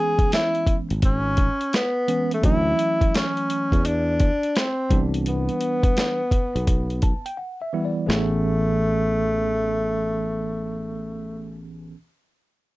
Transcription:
0.00 0.91 E3 medium
0.00 0.91 G#3 medium
0.00 0.91 B3 medium
0.00 0.91 C#4 medium
0.00 0.33 G#4 loud
0.19 kick medium
0.19 closed hi-hat medium
0.32 0.76 E4 loud
0.32 snare loud
0.32 closed hi-hat medium
0.55 closed hi-hat soft
0.67 kick medium
0.67 closed hi-hat medium
0.90 1.48 G#1 medium
0.90 closed hi-hat soft
1.02 1.77 C#4 loud
1.02 kick loud
1.02 closed hi-hat medium
1.37 kick medium
1.37 closed hi-hat medium
1.61 closed hi-hat soft
1.73 2.33 B3 loud
1.73 snare loud
1.73 closed hi-hat medium
2.08 2.40 E3 medium
2.08 2.41 G#3 medium
2.08 2.41 B3 medium
2.08 2.41 C#4 medium
2.08 closed hi-hat medium
2.31 2.44 A3 medium
2.31 closed hi-hat medium
2.43 2.72 D2 loud
2.43 3.73 E3 medium
2.43 3.73 F#3 medium
2.43 3.73 A3 medium
2.43 3.74 C#4 medium
2.43 3.17 E4 loud
2.43 kick loud
2.43 closed hi-hat medium
2.79 closed hi-hat medium
3.01 kick medium
3.01 closed hi-hat medium
3.15 3.88 C#4 loud
3.15 snare loud
3.15 closed hi-hat medium
3.37 closed hi-hat soft
3.50 closed hi-hat medium
3.72 4.30 E2 medium
3.72 kick medium
3.72 closed hi-hat soft
3.85 4.59 D4 loud
3.85 closed hi-hat medium
4.20 kick medium
4.20 closed hi-hat medium
4.43 closed hi-hat soft
4.56 5.02 C4 medium
4.56 snare loud
4.56 closed hi-hat medium
4.90 5.48 C2 loud
4.90 6.20 E3 medium
4.90 6.20 G3 medium
4.90 6.20 B3 medium
4.90 6.21 D4 medium
4.90 kick loud
4.90 closed hi-hat medium
5.14 closed hi-hat medium
5.26 7.35 B3 medium
5.26 closed hi-hat medium
5.49 closed hi-hat soft
5.61 closed hi-hat medium
5.83 kick loud
5.83 closed hi-hat medium
5.97 snare loud
5.97 closed hi-hat medium
6.31 kick medium
6.31 closed hi-hat medium
6.56 7.12 B1 medium
6.56 closed hi-hat soft
6.67 kick medium
6.67 closed hi-hat medium
6.90 closed hi-hat soft
7.02 7.24 A5 medium
7.02 kick medium
7.02 closed hi-hat medium
7.26 7.37 G5 medium
7.26 closed hi-hat soft
7.37 7.59 F#5 medium
7.62 7.83 E5 medium
7.73 8.05 E3 medium
7.73 8.05 G3 medium
7.73 8.06 B3 medium
7.73 8.06 E4 medium
7.85 8.07 D5 medium
8.06 11.94 A1 medium
8.06 11.92 E3 medium
8.06 11.67 A3 loud
8.06 11.95 B3 medium
8.06 11.94 G#4 medium
8.06 snare loud
8.11 11.96 C#4 medium

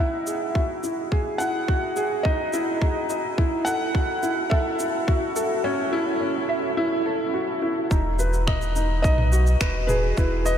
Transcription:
0.00 2.25 D#4 medium
0.00 0.83 E4 medium
0.00 3.10 D#5 medium
0.00 1.07 E5 medium
0.27 0.54 G#4 medium
0.27 shaker medium
0.55 0.82 F#4 medium
0.55 kick medium
0.83 1.00 E4 medium
0.83 shaker medium
1.12 1.39 G#4 medium
1.12 kick medium
1.38 1.67 E4 medium
1.38 2.27 F#5 loud
1.38 shaker medium
1.68 1.95 F#4 medium
1.68 kick medium
1.96 2.23 G#4 loud
1.96 shaker medium
2.23 2.41 D#4 medium
2.23 3.33 D#5 medium
2.23 kick loud
2.53 2.80 E4 loud
2.53 shaker medium
2.82 3.09 D#4 medium
2.82 kick loud
3.10 3.26 D#5 medium
3.10 shaker medium
3.38 3.65 E4 medium
3.38 kick loud
3.65 3.93 A4 medium
3.65 4.53 F#5 loud
3.65 shaker medium
3.95 4.22 F#4 medium
3.95 kick loud
4.23 4.39 E4 medium
4.23 shaker medium
4.50 4.78 A4 medium
4.50 5.60 E5 loud
4.50 kick loud
4.79 5.06 E4 medium
4.79 shaker medium
5.08 5.35 F#4 loud
5.08 kick loud
5.36 5.63 A4 medium
5.36 shaker medium
5.64 5.81 C#4 loud
5.93 6.20 E4 loud
6.21 6.48 C#4 medium
6.49 6.65 E5 medium
6.77 7.04 E4 loud
7.06 7.33 A4 medium
7.34 7.61 F#4 medium
7.62 7.79 E4 medium
7.90 9.06 E1 medium
7.90 8.18 D#4 medium
7.90 kick loud
7.90 shaker soft
8.19 8.46 B4 medium
8.19 shaker medium
8.33 shaker soft
8.47 8.74 D#5 medium
8.47 finger snap medium
8.47 kick loud
8.47 mid tom medium
8.62 shaker soft
8.76 9.03 D#4 medium
8.76 shaker medium
9.02 9.56 B1 medium
9.02 9.20 D#4 medium
9.02 9.91 D#5 loud
9.02 kick loud
9.02 shaker soft
9.18 mid tom medium
9.32 9.48 F#4 medium
9.32 shaker medium
9.47 shaker soft
9.60 10.13 E1 medium
9.60 9.87 B4 medium
9.60 finger snap loud
9.60 kick loud
9.60 shaker soft
9.87 10.16 G#4 medium
9.87 10.58 B4 medium
9.87 mid tom medium
9.87 shaker medium
10.17 10.58 E1 loud
10.17 10.44 E4 medium
10.17 kick medium
10.17 shaker soft
10.46 10.58 D#5 loud
10.46 shaker medium

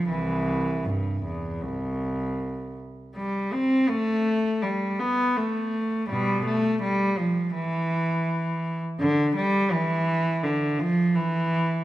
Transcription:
0.09 0.82 C2 medium
0.09 0.84 E3 medium
0.85 1.24 G2 medium
1.24 1.62 E2 medium
1.62 2.78 C2 medium
3.16 3.50 G3 medium
3.53 3.90 C4 medium
3.89 4.62 A3 medium
4.63 4.99 G3 medium
4.99 5.36 B3 medium
5.36 6.09 A3 medium
6.09 6.43 B2 medium
6.09 6.45 G3 medium
6.46 6.81 A3 medium
6.82 7.17 G3 medium
7.18 7.54 F3 medium
7.54 8.79 E3 medium
8.99 9.33 D3 medium
9.36 9.71 G3 medium
9.71 10.44 E3 medium
10.43 10.80 D3 medium
10.79 11.16 F3 medium
11.15 11.84 E3 medium

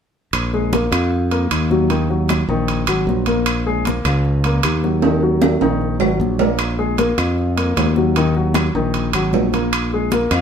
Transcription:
0.33 0.88 A#1 medium
0.33 high conga soft
0.33 high timbale medium
0.33 claves medium
0.53 0.69 G#3 medium
0.53 0.70 G#4 medium
0.53 high conga soft
0.73 0.89 A#3 medium
0.73 0.89 A#4 medium
0.73 high conga loud
0.73 high timbale medium
0.92 1.47 F2 medium
0.92 1.24 F4 medium
0.92 1.25 F5 medium
0.92 high timbale medium
0.92 claves medium
1.12 high conga soft
1.31 1.63 A#3 medium
1.31 1.64 A#4 medium
1.31 high conga soft
1.31 high timbale medium
1.51 2.43 D#2 medium
1.51 high conga medium
1.51 high timbale loud
1.51 claves medium
1.71 1.87 F#3 medium
1.71 1.87 F#4 medium
1.71 high conga medium
1.90 2.06 D#3 medium
1.90 2.06 D#4 medium
1.90 high timbale medium
2.10 2.42 F#3 medium
2.10 2.42 F#4 medium
2.10 high conga soft
2.29 high conga medium
2.29 high timbale medium
2.29 claves medium
2.49 2.85 A#1 medium
2.49 2.81 D#3 medium
2.49 2.81 D#4 medium
2.68 high conga soft
2.68 high timbale medium
2.87 3.06 G#1 medium
2.87 3.20 F#3 medium
2.87 3.20 F#4 medium
2.87 high conga soft
2.87 high timbale medium
2.87 claves medium
3.07 3.99 A#1 medium
3.07 high conga medium
3.26 3.59 A#3 medium
3.26 3.60 A#4 medium
3.26 high conga medium
3.26 high timbale medium
3.46 high conga soft
3.46 high timbale medium
3.46 claves medium
3.66 3.82 G#3 medium
3.66 3.82 G#4 medium
3.66 high conga soft
3.85 4.02 A#3 medium
3.85 4.02 A#4 medium
3.85 high conga medium
3.85 high timbale medium
4.05 4.60 C#2 loud
4.05 4.38 F4 medium
4.05 4.38 F5 medium
4.05 high timbale medium
4.05 claves medium
4.25 high conga soft
4.44 4.77 A#3 medium
4.44 4.77 A#4 medium
4.44 high conga soft
4.44 high timbale medium
4.63 5.56 D#2 medium
4.63 high conga medium
4.63 high timbale loud
4.63 claves medium
4.84 5.00 F#3 medium
4.84 5.00 F#4 medium
4.84 high conga medium
5.02 5.19 D#3 medium
5.02 5.19 D#4 medium
5.02 high conga soft
5.02 high timbale medium
5.22 5.55 F#3 medium
5.22 5.55 F#4 medium
5.22 high conga soft
5.41 high conga medium
5.41 high timbale medium
5.41 claves medium
5.61 5.98 A#1 medium
5.61 5.94 D#3 medium
5.61 5.94 D#4 medium
5.61 high timbale medium
5.81 high conga soft
6.00 6.19 G#1 medium
6.00 6.33 F#3 medium
6.00 6.33 F#4 medium
6.00 high conga soft
6.00 low timbale medium
6.00 claves medium
6.20 7.12 A#1 medium
6.20 high conga medium
6.39 6.72 A#3 medium
6.39 6.72 A#4 medium
6.39 high conga medium
6.39 low timbale medium
6.59 high conga soft
6.59 high timbale medium
6.59 claves medium
6.79 6.95 G#3 medium
6.79 6.95 G#4 medium
6.79 high conga soft
6.98 7.15 A#3 medium
6.98 7.15 A#4 medium
6.98 high conga medium
6.98 high timbale medium
7.18 7.73 F2 medium
7.18 7.50 F4 medium
7.18 7.50 F5 medium
7.18 high timbale medium
7.18 claves medium
7.38 high conga soft
7.57 7.89 A#3 medium
7.57 7.89 A#4 medium
7.57 high conga soft
7.57 high timbale medium
7.77 8.69 D#2 medium
7.77 high conga medium
7.77 high timbale medium
7.77 low timbale medium
7.77 claves soft
7.96 8.13 F#3 medium
7.96 8.13 F#4 medium
7.96 high conga medium
8.15 8.33 D#3 medium
8.15 8.33 D#4 medium
8.15 high conga soft
8.15 high timbale medium
8.35 8.68 F#3 medium
8.35 8.68 F#4 medium
8.35 high conga soft
8.54 high conga loud
8.54 high timbale medium
8.54 claves medium
8.75 9.11 A#1 medium
8.75 9.07 D#3 medium
8.75 9.07 D#4 medium
8.94 high conga soft
8.94 high timbale medium
9.13 9.32 G#1 medium
9.13 9.46 F#3 medium
9.13 9.47 F#4 medium
9.13 high conga soft
9.13 high timbale medium
9.13 claves medium
9.33 10.26 A#1 medium
9.33 high conga medium
9.33 low timbale medium
9.53 9.86 A#3 medium
9.53 9.86 A#4 medium
9.53 high conga medium
9.53 high timbale medium
9.73 high conga soft
9.73 high timbale medium
9.73 claves medium
9.92 10.09 G#3 medium
9.92 10.09 G#4 medium
9.92 high conga soft
10.12 10.29 A#3 medium
10.12 10.29 A#4 medium
10.12 high conga loud
10.12 high timbale medium
10.31 10.41 F2 medium
10.31 10.41 F4 medium
10.31 10.41 F5 medium
10.31 high timbale medium
10.31 claves medium

